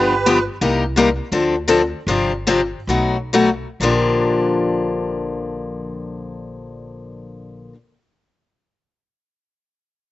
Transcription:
Already playing: upright bass G1, steel-string acoustic guitar D3 F3 B3 D4 G4, soprano saxophone G4, accordion B4
0.26 steel-string acoustic guitar D3 F3 B3 D4 G4
0.61 upright bass C2, steel-string acoustic guitar C3 G3 A#3 D#4 G4
0.96 steel-string acoustic guitar C3 G3 A#3 D#4 G4
1.32 upright bass D2, steel-string acoustic guitar D3 F3 C4 D4 A4
1.68 steel-string acoustic guitar D3 F3 C4 D4 A4
2.07 upright bass G1, steel-string acoustic guitar C3 F3 C4 D4 G4
2.47 steel-string acoustic guitar C3 F3 C4 D4 G4
2.87 upright bass B1, steel-string acoustic guitar B2 F#3 A3 D#4 F#4
3.33 steel-string acoustic guitar B2 F#3 A3 D#4 F#4
3.80 upright bass A#1, steel-string acoustic guitar A#2 D3 F3 A#3 D4 G4

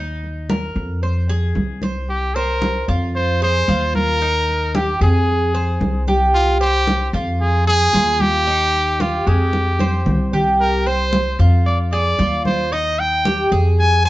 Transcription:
Already playing: upright bass D#2, cuban tres D#4
0.23 high conga
0.50 cuban tres A#4, high conga
0.76 upright bass F2, high conga
1.02 cuban tres C5, high conga
1.29 cuban tres G#4, high conga
1.55 upright bass C2, high conga
1.82 cuban tres C5, high conga
2.08 trumpet G4, high conga
2.35 trumpet A#4, cuban tres C5, high conga
2.62 high conga
2.88 upright bass F2, cuban tres F4, high conga
3.15 trumpet C5, high conga
3.42 cuban tres G#4, trumpet C5, high conga
3.68 upright bass D#2, cuban tres F4, high conga
3.95 trumpet A#4, high conga
4.21 cuban tres D#4, high conga
4.48 high conga
4.75 cuban tres G4, trumpet G4, high conga
5.01 upright bass F2, cuban tres G#4, trumpet G#4, high conga
5.28 high conga
5.54 cuban tres C5, high conga
5.81 upright bass C2, high conga
6.07 cuban tres G4, high conga
6.34 trumpet F4, high conga
6.61 trumpet G4, cuban tres C5, high conga
6.88 high conga
7.13 upright bass F2, cuban tres F4, high conga
7.40 trumpet G#4, high conga
7.67 trumpet G#4, cuban tres G#4, high conga
7.93 upright bass D#2, cuban tres F4, high conga
8.20 trumpet G4, high conga
8.47 cuban tres D#4, high conga
8.73 high conga
9.00 trumpet F4, cuban tres G4, high conga
9.27 upright bass F2, cuban tres G#3, trumpet G4, high conga
9.53 high conga
9.79 cuban tres C5, high conga
10.06 upright bass C2, low conga
10.33 cuban tres G4, low conga
10.59 trumpet A#4, high conga
10.86 cuban tres C5, trumpet C5, high conga
11.13 high conga
11.39 upright bass F2, cuban tres F4, high conga
11.65 trumpet D5, high conga
11.92 cuban tres G#4, trumpet D5, high conga
12.19 upright bass D#2, cuban tres F4, high conga
12.45 trumpet C5, high conga
12.72 cuban tres D#4, trumpet D#5, high conga
12.99 trumpet G5, high conga
13.25 cuban tres G4, high conga
13.52 upright bass F2, cuban tres G#4, high conga
13.79 trumpet G#5, high conga
14.05 cuban tres C5, trumpet G#5, high conga

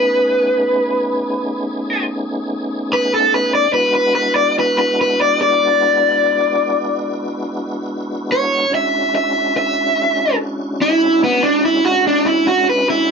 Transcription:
Already playing: tonewheel organ A3 B3 C#4 D#4 G#4, overdriven electric guitar B4
2.93 overdriven electric guitar B4
3.14 overdriven electric guitar A4
3.34 overdriven electric guitar B4
3.55 overdriven electric guitar D5
3.71 tonewheel organ G#3 B3 D4 E4 F#4, overdriven electric guitar B4
3.95 overdriven electric guitar B4
4.15 overdriven electric guitar B4
4.36 overdriven electric guitar D5
4.59 overdriven electric guitar B4
4.79 overdriven electric guitar B4
5.01 overdriven electric guitar B4
5.21 overdriven electric guitar D5
5.42 overdriven electric guitar D5
8.32 overdriven electric guitar C#5
8.69 tonewheel organ G#3 C#4 D4 E4 F#4
8.75 overdriven electric guitar E5
9.15 overdriven electric guitar E5
9.57 overdriven electric guitar E5
10.82 overdriven electric guitar E4
11.24 overdriven electric guitar B3
11.43 overdriven electric guitar D4
11.65 overdriven electric guitar E4
11.85 overdriven electric guitar F#4
12.07 overdriven electric guitar D4
12.26 overdriven electric guitar E4
12.47 overdriven electric guitar F#4
12.69 overdriven electric guitar B4
12.90 overdriven electric guitar E4

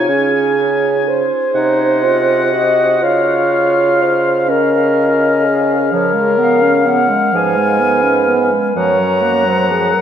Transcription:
Already playing: clarinet D#4, french horn F4, flute C#5, oboe G#5
0.09 bassoon C#3, clarinet C#4, french horn G#4
1.08 french horn C5
1.53 bassoon C3, clarinet D#4, flute D#5, oboe F#5
2.03 clarinet F4
2.52 clarinet F#4, french horn D#5
3.02 bassoon C#3, clarinet F4, french horn C#5, flute F5, oboe F5
4.02 french horn C5
4.48 clarinet C#4, french horn A#4, flute D#5, oboe F5
5.45 french horn G#4
5.92 bassoon C#3, clarinet F3, french horn A#4, flute C#5, oboe F5
6.14 clarinet G#3
6.38 clarinet B3
6.42 flute F5
6.62 clarinet C#4
6.86 clarinet B3, flute F#5
7.10 clarinet G#3
7.33 bassoon G#2, clarinet F3, french horn B4, flute G#5
7.57 clarinet G#3
7.80 clarinet B3
8.03 clarinet C#4
8.28 clarinet B3
8.52 clarinet G#3
8.75 bassoon F#2, clarinet F3, french horn C#5, oboe F#5, flute A#5
8.98 clarinet F#3
9.22 clarinet A#3
9.46 clarinet F#3, french horn C5
9.68 clarinet F3, french horn G#4
9.93 clarinet F#3, french horn A#4

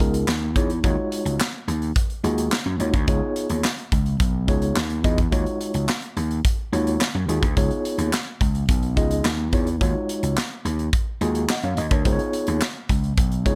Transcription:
0.00 slap bass C#2, tine electric piano B3 D#4 F4 G#4 A#4, kick, closed hi-hat
0.14 closed hi-hat
0.27 slap bass D#2, snare, clap
0.56 slap bass E2, tine electric piano B3 D#4 F4 G#4 C#5, kick, closed hi-hat
0.70 closed hi-hat
0.84 slap bass D#2, tine electric piano G#3 D#4 F4 F#4 C#5, kick, closed hi-hat
1.12 closed hi-hat
1.25 slap bass C#2, closed hi-hat
1.40 snare, clap
1.68 slap bass D#2, closed hi-hat
1.82 closed hi-hat
1.96 kick, closed hi-hat
2.10 closed hi-hat
2.24 slap bass D#2, tine electric piano G#3 D#4 F4 F#4 G#4, closed hi-hat
2.38 closed hi-hat
2.52 snare, clap
2.66 slap bass F#2
2.80 slap bass D#2, tine electric piano G#3 D#4 F4 F#4 C#5, closed hi-hat
2.94 slap bass D2, kick, closed hi-hat
3.08 slap bass C#2, tine electric piano B3 D#4 F4 G#4 C#5, kick, closed hi-hat
3.36 closed hi-hat
3.50 slap bass D#2, closed hi-hat
3.64 snare, clap
3.78 closed hi-hat
3.92 slap bass C#2, kick, closed hi-hat
4.06 closed hi-hat
4.20 slap bass B1, kick, closed hi-hat
4.48 slap bass C#2, tine electric piano B3 D#4 F4 G#4 C#5, kick, closed hi-hat
4.62 closed hi-hat
4.76 slap bass D#2, snare, clap
4.90 closed hi-hat
5.04 slap bass E2, tine electric piano B3 D#4 F4 G#4 D#5, kick, closed hi-hat
5.18 kick, closed hi-hat
5.32 slap bass D#2, tine electric piano G#3 D#4 F4 F#4 C#5, kick, closed hi-hat
5.46 closed hi-hat
5.61 closed hi-hat
5.74 slap bass C#2, closed hi-hat
5.89 snare, clap
6.02 closed hi-hat
6.17 slap bass D#2, closed hi-hat
6.31 closed hi-hat
6.45 kick, closed hi-hat
6.73 slap bass D#2, tine electric piano G#3 D#4 F4 F#4 C#5, closed hi-hat
6.87 closed hi-hat
7.01 snare, clap
7.15 slap bass F#2
7.28 slap bass D#2, tine electric piano G#3 D#4 F4 F#4 G#4, closed hi-hat
7.43 slap bass D2, kick, closed hi-hat
7.57 slap bass C#2, tine electric piano B3 D#4 F4 G#4 C#5, kick, closed hi-hat
7.71 closed hi-hat
7.85 closed hi-hat
7.98 slap bass D#2, closed hi-hat
8.13 snare, clap
8.41 slap bass C#2, kick, closed hi-hat
8.55 closed hi-hat
8.69 slap bass B1, kick, closed hi-hat
8.83 closed hi-hat
8.97 slap bass C#2, tine electric piano B3 D#4 F4 G#4 D#5, kick, closed hi-hat
9.11 closed hi-hat
9.24 slap bass D#2, snare, clap
9.53 slap bass E2, tine electric piano B3 D#4 F4 G#4 C#5, kick, closed hi-hat
9.67 closed hi-hat
9.81 slap bass D#2, tine electric piano G#3 D#4 F4 F#4 C#5, kick, closed hi-hat
10.09 closed hi-hat
10.23 slap bass C#2, closed hi-hat
10.37 snare, clap
10.65 slap bass D#2, closed hi-hat
10.79 closed hi-hat
10.93 kick, closed hi-hat
11.21 slap bass D#2, tine electric piano G#3 D#4 F4 F#4 G#4, closed hi-hat
11.35 closed hi-hat
11.49 tine electric piano D#5 F#5, snare, clap
11.63 slap bass F#2, tine electric piano C#5 F5, closed hi-hat
11.77 slap bass D#2, tine electric piano D#5, closed hi-hat
11.91 slap bass D2, tine electric piano A#4 C#5, kick, closed hi-hat
12.05 slap bass C#2, tine electric piano B3 D#4 F4 G#4 C5, kick, closed hi-hat
12.12 tine electric piano C#5
12.19 closed hi-hat
12.33 closed hi-hat
12.47 slap bass D#2, closed hi-hat
12.62 snare, clap
12.89 slap bass C#2, kick, closed hi-hat
13.04 closed hi-hat
13.18 slap bass B1, kick, closed hi-hat
13.32 closed hi-hat
13.45 slap bass C#2, tine electric piano B3 D#4 F4 G#4 C#5, kick, closed hi-hat

